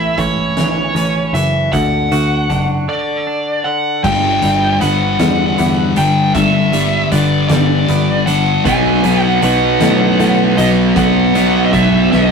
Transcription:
0.00 0.14 A1 medium
0.00 1.34 A2 medium
0.00 1.73 E4 medium
0.00 0.21 E5 medium
0.18 0.91 A1 medium
0.18 0.94 C#4 medium
0.18 1.38 C#5 medium
0.18 kick medium
0.18 closed hi-hat medium
0.57 1.33 E3 medium
0.57 snare medium
0.57 closed hi-hat medium
0.95 1.30 A1 medium
0.95 1.73 C#4 medium
0.95 closed hi-hat medium
1.33 1.69 F#1 medium
1.33 1.73 E3 medium
1.33 1.73 E5 medium
1.33 closed hi-hat medium
1.73 2.08 D2 medium
1.73 2.87 D3 medium
1.73 3.23 F#5 medium
1.73 kick medium
1.73 closed hi-hat medium
2.12 2.47 D2 medium
2.12 4.05 F#4 medium
2.12 closed hi-hat medium
2.50 2.86 F#1 medium
2.50 3.26 D4 medium
2.50 kick medium
2.50 closed hi-hat soft
2.88 3.64 D3 medium
2.88 3.68 D5 medium
3.27 4.04 D4 medium
3.64 4.04 D3 medium
3.64 4.04 F#5 medium
4.04 4.38 G1 medium
4.04 4.42 G2 medium
4.04 5.97 G2 medium
4.04 4.42 D3 medium
4.04 4.43 G3 loud
4.04 4.81 G5 medium
4.04 kick loud
4.04 crash medium
4.42 4.77 G1 medium
4.42 4.80 G2 medium
4.42 4.80 D3 medium
4.42 5.18 G3 medium
4.42 4.82 G3 medium
4.42 closed hi-hat medium
4.80 5.15 G1 medium
4.80 5.18 G2 medium
4.80 5.19 D3 medium
4.80 5.20 G3 medium
4.80 5.57 B3 medium
4.80 5.97 F#5 medium
4.80 closed hi-hat medium
5.19 5.54 E2 medium
5.19 5.94 G2 medium
5.19 5.95 D3 medium
5.19 6.72 G3 medium
5.19 5.96 G3 loud
5.19 snare loud
5.19 closed hi-hat medium
5.58 5.93 E2 medium
5.58 7.11 B3 medium
5.58 closed hi-hat medium
5.95 6.31 G1 medium
5.95 6.33 G2 medium
5.95 6.33 D3 medium
5.95 6.34 G3 medium
5.95 7.89 D4 medium
5.95 6.33 G5 medium
5.95 closed hi-hat medium
6.34 7.02 G1 medium
6.34 6.72 G2 medium
6.34 8.27 G2 medium
6.34 6.73 D3 medium
6.34 6.73 G3 loud
6.34 7.08 E5 medium
6.34 kick loud
6.34 closed hi-hat medium
6.73 7.10 G2 medium
6.73 7.11 D3 medium
6.73 7.50 G3 medium
6.73 7.12 G3 medium
6.73 closed hi-hat medium
7.12 7.46 G1 medium
7.12 7.48 G2 medium
7.12 7.49 D3 medium
7.12 7.50 G3 medium
7.12 7.88 B3 medium
7.12 7.48 D5 medium
7.12 closed hi-hat medium
7.49 7.84 G1 medium
7.49 8.25 G2 loud
7.49 8.26 D3 loud
7.49 8.27 G3 loud
7.49 8.66 G3 medium
7.49 8.22 D5 medium
7.49 snare loud
7.49 closed hi-hat medium
7.88 8.56 G1 medium
7.88 8.66 B3 medium
7.88 closed hi-hat medium
8.26 8.63 G2 medium
8.26 8.63 D3 medium
8.26 8.64 G3 medium
8.26 8.66 D4 medium
8.26 8.65 F#5 medium
8.26 closed hi-hat medium
8.65 8.99 B1 medium
8.65 9.03 B2 medium
8.65 9.04 F#3 loud
8.65 9.04 B3 loud
8.65 9.23 G#5 loud
8.65 kick loud
8.65 closed hi-hat medium
9.03 9.38 B1 medium
9.03 9.42 B2 medium
9.03 9.43 F#3 medium
9.03 9.43 B3 medium
9.03 closed hi-hat medium
9.23 9.42 F#5 loud
9.42 9.76 B1 medium
9.42 9.80 B2 medium
9.42 9.81 F#3 medium
9.42 9.82 B3 medium
9.42 10.61 F#5 loud
9.42 closed hi-hat medium
9.81 10.15 A2 medium
9.81 10.56 B2 medium
9.81 10.57 F#3 loud
9.81 10.58 B3 medium
9.81 snare loud
9.81 closed hi-hat medium
10.20 10.53 A2 medium
10.20 closed hi-hat medium
10.57 10.92 B1 medium
10.57 10.94 B2 medium
10.57 10.95 F#3 medium
10.57 10.95 B3 medium
10.57 10.67 D#5 medium
10.57 closed hi-hat medium
10.95 11.63 B1 medium
10.95 11.33 B2 loud
10.95 11.34 F#3 medium
10.95 11.34 B3 loud
10.95 11.68 F#5 loud
10.95 kick loud
10.95 closed hi-hat medium
11.34 11.71 B2 medium
11.34 11.72 F#3 medium
11.34 11.73 B3 medium
11.34 closed hi-hat medium
11.65 11.72 D#5 medium
11.73 12.07 B1 medium
11.73 12.10 B2 medium
11.73 12.11 F#3 loud
11.73 12.12 B3 medium
11.73 12.09 E5 medium
11.73 kick medium
11.73 closed hi-hat medium
12.11 12.31 B1 medium
12.11 12.31 B2 medium
12.11 12.31 F#3 loud
12.11 12.31 B3 loud
12.11 12.31 D#5 medium
12.11 snare medium

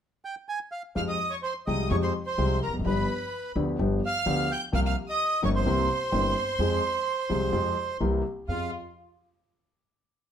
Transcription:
0.25 0.35 G5 medium
0.49 0.59 G#5 medium
0.72 0.82 F5 medium
0.95 1.16 F2 medium
0.95 1.16 F3 medium
0.95 1.16 G#3 soft
0.95 1.15 C4 soft
0.95 1.16 G4 medium
0.95 1.01 F5 medium
0.95 1.02 F6 medium
1.08 1.32 D#5 medium
1.08 1.30 D#6 soft
1.30 1.36 C#5 medium
1.30 1.37 C#6 soft
1.43 1.53 C5 medium
1.43 1.55 C6 soft
1.66 1.87 C2 medium
1.66 1.87 C3 medium
1.66 1.87 F3 medium
1.66 1.87 G#3 soft
1.66 1.87 C4 soft
1.66 1.87 G4 medium
1.66 1.89 D#5 medium
1.66 1.89 D#6 medium
1.90 2.11 F2 medium
1.90 2.11 F3 medium
1.90 2.11 G#3 medium
1.90 2.11 C4 medium
1.90 2.11 G4 medium
1.90 1.96 C#5 medium
1.90 1.96 C#6 medium
2.02 2.13 C5 medium
2.02 2.13 C6 soft
2.26 2.59 C5 medium
2.26 2.59 C6 soft
2.38 2.58 C2 medium
2.38 2.58 C3 medium
2.38 2.58 F3 soft
2.38 2.58 G#3 soft
2.38 2.58 C4 soft
2.38 2.58 G4 medium
2.63 2.73 A#4 medium
2.63 2.74 A#5 soft
2.68 2.74 E1 soft
2.68 2.74 E2 soft
2.74 2.78 F1 soft
2.74 2.80 F2 soft
2.79 2.84 F#1 medium
2.79 2.85 F#2 medium
2.85 3.05 G1 medium
2.85 3.05 G2 medium
2.85 3.05 F3 medium
2.85 3.05 B3 soft
2.85 3.05 D4 soft
2.85 3.05 G4 medium
2.85 3.52 B4 medium
2.85 3.52 B5 soft
3.56 3.75 D2 medium
3.56 3.76 D3 medium
3.56 3.75 F3 medium
3.56 3.76 B3 soft
3.56 3.76 D4 soft
3.56 3.76 G4 medium
3.79 3.99 G1 medium
3.79 3.99 G2 medium
3.79 3.99 F3 medium
3.79 3.99 B3 medium
3.79 3.99 D4 medium
3.79 3.99 G4 medium
4.05 4.52 F5 medium
4.05 4.48 F6 medium
4.26 4.46 D2 medium
4.26 4.46 D3 medium
4.26 4.46 F3 medium
4.26 4.46 B3 medium
4.26 4.46 D4 medium
4.26 4.46 G4 medium
4.52 4.62 G5 medium
4.52 4.63 G6 medium
4.72 4.92 C2 medium
4.72 4.93 C2 medium
4.72 4.92 C3 medium
4.72 4.92 F3 medium
4.72 4.92 A#3 medium
4.72 4.92 C4 soft
4.72 4.92 G4 medium
4.72 4.80 F5 medium
4.72 4.80 F6 medium
4.86 4.96 F5 medium
4.86 4.96 F6 soft
5.09 5.41 D#5 medium
5.09 5.41 D#6 medium
5.42 5.63 G1 medium
5.42 5.63 G2 medium
5.42 5.62 F3 medium
5.42 5.62 A#3 soft
5.42 5.63 C4 medium
5.42 5.63 G4 medium
5.42 5.50 C#5 medium
5.42 5.49 C#6 medium
5.56 7.97 C5 medium
5.56 7.98 C6 medium
5.66 5.86 C2 medium
5.66 5.86 C3 medium
5.66 5.86 E3 medium
5.66 5.86 A#3 medium
5.66 5.86 C4 medium
5.66 5.86 G4 medium
6.12 6.32 G1 medium
6.12 6.32 G2 medium
6.12 6.32 E3 medium
6.12 6.32 A#3 medium
6.12 6.32 C4 medium
6.12 6.32 G4 medium
6.59 6.79 F2 medium
6.59 6.79 F3 medium
6.59 6.79 G#3 medium
6.59 6.79 C4 soft
6.59 6.80 G#4 medium
7.29 7.50 C2 medium
7.29 7.50 C3 medium
7.29 7.49 F3 medium
7.29 7.50 G#3 medium
7.29 7.50 C4 soft
7.29 7.50 G#4 medium
7.52 7.73 F2 medium
7.52 7.73 F3 medium
7.52 7.73 G#3 medium
7.52 7.73 C4 medium
7.52 7.73 G#4 medium
8.00 8.21 C2 medium
8.00 8.21 C3 medium
8.00 8.21 E3 medium
8.00 8.21 A#3 medium
8.00 8.21 C4 soft
8.00 8.21 G4 medium
8.48 8.68 F2 soft
8.48 8.69 F2 soft
8.48 8.69 C4 soft
8.48 8.70 F4 soft
8.48 8.69 F4 soft
8.48 8.69 G#4 soft
8.48 8.71 F5 medium

